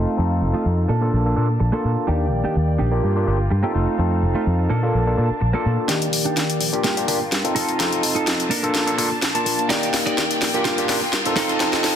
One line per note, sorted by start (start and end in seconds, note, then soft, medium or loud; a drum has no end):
0.00 0.41 A3 medium
0.00 0.15 C4 medium
0.00 0.15 D#4 medium
0.00 0.41 D#4 medium
0.00 0.88 D#4 medium
0.00 0.15 F4 medium
0.00 0.41 F4 medium
0.00 0.15 A4 medium
0.00 0.88 A4 medium
0.00 0.88 F5 medium
0.17 0.43 F2 medium
0.17 0.87 C4 medium
0.17 0.87 D#4 medium
0.17 0.88 F4 medium
0.17 0.88 A4 medium
0.42 0.52 F1 medium
0.53 0.65 A3 medium
0.53 0.65 D#4 medium
0.53 0.65 F4 medium
0.53 muted fingered electric bass stroke soft
0.65 0.85 F2 medium
0.78 muted clean electric guitar stroke soft
0.88 1.09 A#2 medium
0.88 1.47 A#3 medium
0.88 2.07 A#3 medium
0.88 1.47 D4 medium
0.88 2.07 D4 medium
0.88 1.47 A4 loud
0.88 2.07 A5 medium
1.01 1.22 A#3 medium
1.01 1.22 D4 medium
1.01 1.23 F4 medium
1.01 1.23 A4 medium
1.13 1.33 A#1 medium
1.25 1.34 A#3 medium
1.25 1.34 D4 medium
1.25 1.34 F4 medium
1.25 1.34 A4 medium
1.36 1.57 A#2 medium
1.36 1.47 A#3 medium
1.36 1.47 D4 medium
1.36 1.47 F4 medium
1.36 1.47 A4 medium
1.60 1.71 A#1 loud
1.60 muted clean electric guitar stroke medium
1.72 1.90 A#3 loud
1.72 2.05 A#3 medium
1.72 1.90 D4 medium
1.72 2.05 D4 medium
1.72 2.05 F4 medium
1.72 1.90 A4 loud
1.72 2.05 A4 medium
1.85 1.95 A#2 medium
2.07 2.32 D#2 loud
2.07 2.89 D#3 medium
2.07 2.89 A#3 medium
2.07 2.26 D4 loud
2.07 2.26 D#4 medium
2.07 2.26 G4 loud
2.07 2.89 G4 medium
2.07 2.89 D5 medium
2.07 3.02 D5 medium
2.07 3.73 G5 medium
2.32 2.43 A#1 medium
2.44 2.55 D4 medium
2.44 2.55 D#4 medium
2.44 2.56 G4 medium
2.56 2.76 D#2 loud
2.68 muted clean electric guitar stroke soft
2.78 3.00 A#1 medium
2.78 2.92 D4 medium
2.78 2.92 D#4 medium
2.78 2.92 G4 medium
2.92 3.13 A#3 medium
2.92 3.13 D4 medium
2.92 3.13 F4 medium
2.92 3.13 G4 loud
3.02 3.23 G2 medium
3.02 3.74 F4 medium
3.02 3.74 A#4 medium
3.02 muted clean electric guitar stroke soft
3.16 3.24 A#3 medium
3.16 3.24 D4 medium
3.16 3.25 F4 medium
3.16 3.25 G4 medium
3.27 3.47 G1 medium
3.27 3.37 A#3 medium
3.27 3.37 D4 medium
3.27 3.37 F4 medium
3.27 3.37 G4 medium
3.50 3.62 G2 loud
3.50 muted clean electric guitar stroke medium
3.63 3.74 A#3 loud
3.63 3.96 C4 medium
3.63 3.96 D#4 medium
3.63 3.74 F4 medium
3.63 3.96 F4 medium
3.63 3.75 G4 loud
3.63 3.96 A4 loud
3.74 3.85 F1 medium
3.74 4.22 A3 medium
3.74 4.22 D#4 medium
3.74 4.69 D#4 medium
3.74 4.22 F4 medium
3.74 4.69 A4 medium
3.74 4.69 F5 medium
3.98 4.24 F2 loud
3.98 4.68 C4 medium
3.98 4.69 D#4 medium
3.98 4.69 F4 medium
3.98 4.69 A4 medium
4.22 4.33 F1 medium
4.34 4.46 A3 medium
4.34 4.46 D#4 medium
4.34 4.46 F4 medium
4.34 muted fingered electric bass stroke soft
4.47 4.66 F2 loud
4.58 muted clean electric guitar stroke soft
4.69 4.90 A#2 medium
4.69 5.87 A#3 medium
4.69 5.28 A#3 medium
4.69 5.87 D4 medium
4.69 5.28 D4 medium
4.69 5.28 A4 loud
4.69 5.87 A5 medium
4.83 5.03 A#3 medium
4.83 5.04 D4 medium
4.83 5.04 F4 medium
4.83 5.04 A4 loud
4.94 5.14 A#1 medium
5.07 5.15 A#3 medium
5.07 5.15 D4 medium
5.07 5.15 F4 medium
5.07 5.15 A4 medium
5.17 5.28 A#2 medium
5.17 5.28 A#3 medium
5.17 5.28 D4 medium
5.17 5.28 F4 medium
5.17 5.28 A4 medium
5.31 muted fingered electric bass stroke soft
5.41 5.52 A#1 medium
5.41 muted clean electric guitar stroke medium
5.53 5.71 A#3 loud
5.53 5.86 A#3 medium
5.53 5.86 D4 medium
5.53 5.71 D4 medium
5.53 5.86 F4 medium
5.53 5.86 A4 loud
5.53 5.72 A4 loud
5.66 5.76 A#2 loud
5.88 6.13 D#2 medium
5.88 6.70 D#3 medium
5.88 6.70 A#3 medium
5.88 6.07 D4 loud
5.88 6.07 D#4 loud
5.88 6.07 G4 loud
5.88 6.71 G4 medium
5.88 6.70 D5 medium
5.88 6.83 D5 medium
5.88 7.54 G5 medium
5.88 snare soft
5.88 closed hi-hat medium
6.02 closed hi-hat medium
6.13 6.23 A#1 loud
6.13 open hi-hat loud
6.25 6.43 D4 medium
6.25 6.43 D#4 medium
6.25 6.43 G4 medium
6.25 closed hi-hat soft
6.36 6.57 D#2 loud
6.36 snare soft
6.36 closed hi-hat medium
6.50 closed hi-hat medium
6.60 6.80 A#1 medium
6.60 muted clean electric guitar stroke soft
6.60 open hi-hat medium
6.73 6.94 A#3 medium
6.73 6.94 D4 medium
6.73 6.94 F4 medium
6.73 6.94 G4 loud
6.73 closed hi-hat soft
6.83 7.04 G2 medium
6.83 6.97 A#3 medium
6.83 8.49 F4 medium
6.83 6.97 F4 medium
6.83 6.97 G4 medium
6.83 7.55 A#4 medium
6.83 snare medium
6.83 closed hi-hat medium
6.97 7.05 A#3 medium
6.97 7.05 D4 medium
6.97 7.05 F4 medium
6.97 7.06 G4 medium
6.97 closed hi-hat medium
7.07 7.28 G1 medium
7.07 7.18 A#3 medium
7.07 7.18 D4 medium
7.07 7.18 F4 medium
7.07 7.19 G4 medium
7.07 muted clean electric guitar stroke medium
7.07 open hi-hat loud
7.20 muted clean electric guitar stroke soft
7.32 7.42 G2 loud
7.32 snare medium
7.32 closed hi-hat medium
7.44 7.76 C4 medium
7.44 7.77 D#4 medium
7.44 7.77 F4 medium
7.44 7.77 A4 medium
7.44 closed hi-hat medium
7.55 7.66 F1 medium
7.55 8.03 D#4 medium
7.55 8.03 F4 medium
7.55 8.03 A4 loud
7.55 8.49 D#5 medium
7.55 8.49 A5 medium
7.55 open hi-hat medium
7.69 closed hi-hat soft
7.78 8.05 F2 medium
7.78 8.49 C4 medium
7.78 8.49 D#4 medium
7.78 8.50 F4 medium
7.78 8.50 A4 medium
7.78 snare medium
7.78 closed hi-hat medium
7.92 closed hi-hat medium
8.03 8.14 F1 loud
8.03 open hi-hat loud
8.15 8.33 D#4 medium
8.15 8.33 F4 medium
8.15 8.33 A4 medium
8.15 closed hi-hat soft
8.27 8.47 F2 loud
8.27 snare medium
8.27 closed hi-hat medium
8.40 closed hi-hat medium
8.50 8.71 A#2 medium
8.50 9.68 A#3 medium
8.50 8.89 D4 loud
8.50 9.68 D4 medium
8.50 8.89 A4 medium
8.50 8.90 A#4 loud
8.50 9.68 A5 medium
8.50 open hi-hat medium
8.63 8.84 A#3 medium
8.63 8.84 D4 medium
8.63 8.84 F4 medium
8.63 8.84 A4 loud
8.63 closed hi-hat soft
8.75 8.95 A#1 medium
8.75 snare medium
8.75 closed hi-hat medium
8.86 8.95 A#3 medium
8.86 8.96 D4 medium
8.86 8.96 F4 medium
8.86 8.96 A4 medium
8.86 closed hi-hat medium
8.98 9.19 A#2 medium
8.98 9.08 A#3 medium
8.98 9.08 D4 medium
8.98 9.09 F4 medium
8.98 9.09 A4 medium
8.98 muted clean electric guitar stroke medium
8.98 open hi-hat loud
9.11 muted clean electric guitar stroke soft
9.22 9.33 A#1 loud
9.22 snare medium
9.22 closed hi-hat medium
9.35 9.67 A#3 medium
9.35 9.67 D4 medium
9.35 9.67 F4 medium
9.35 9.67 A5 loud
9.35 closed hi-hat soft
9.45 9.57 A#2 medium
9.45 muted clean electric guitar stroke soft
9.45 open hi-hat loud
9.59 closed hi-hat soft
9.69 9.94 D#2 medium
9.69 10.51 A#3 medium
9.69 9.88 D#4 loud
9.69 10.51 D#4 medium
9.69 9.88 G4 medium
9.69 10.51 G4 medium
9.69 10.64 D5 medium
9.69 10.51 D5 medium
9.69 9.88 D5 loud
9.69 11.35 G5 medium
9.69 snare medium
9.69 closed hi-hat medium
9.83 closed hi-hat medium
9.94 10.04 A#1 loud
9.94 snare medium
9.94 open hi-hat loud
10.06 10.24 D#4 medium
10.06 10.24 G4 medium
10.06 10.24 D5 medium
10.06 closed hi-hat soft
10.18 10.38 D#2 loud
10.18 snare medium
10.18 closed hi-hat medium
10.31 closed hi-hat medium
10.41 10.62 A#1 loud
10.41 muted clean electric guitar stroke soft
10.41 snare medium
10.41 open hi-hat medium
10.54 10.75 A#3 medium
10.54 10.75 D4 medium
10.54 10.75 F4 medium
10.54 10.75 G4 loud
10.54 closed hi-hat soft
10.65 10.85 G2 medium
10.65 10.78 F4 medium
10.65 11.96 F4 medium
10.65 10.78 G4 medium
10.65 10.78 A#4 medium
10.65 11.36 A#4 medium
10.65 snare medium
10.65 closed hi-hat medium
10.78 10.86 A#3 medium
10.78 10.87 D4 medium
10.78 10.87 F4 medium
10.78 10.87 G4 medium
10.78 closed hi-hat soft
10.88 11.09 G1 medium
10.88 10.99 A#3 medium
10.88 10.99 D4 medium
10.88 10.99 F4 medium
10.88 11.00 G4 loud
10.88 muted clean electric guitar stroke medium
10.88 snare medium
10.88 open hi-hat loud
11.01 muted clean electric guitar stroke soft
11.12 11.23 G2 loud
11.12 snare medium
11.12 closed hi-hat medium
11.26 11.58 C4 medium
11.26 11.58 D#4 medium
11.26 11.58 F4 medium
11.26 11.58 A4 loud
11.26 closed hi-hat soft
11.36 11.47 F1 medium
11.36 11.84 D#4 loud
11.36 11.84 F4 medium
11.36 11.84 A4 loud
11.36 11.96 D#5 medium
11.36 11.96 A5 medium
11.36 snare medium
11.36 open hi-hat loud
11.49 closed hi-hat soft
11.59 11.85 F2 loud
11.59 11.96 C4 medium
11.59 11.96 D#4 medium
11.59 11.96 F4 medium
11.59 11.96 A4 medium
11.59 snare medium
11.59 closed hi-hat medium
11.73 snare medium
11.73 closed hi-hat medium
11.84 11.95 F1 loud
11.84 snare medium
11.84 open hi-hat loud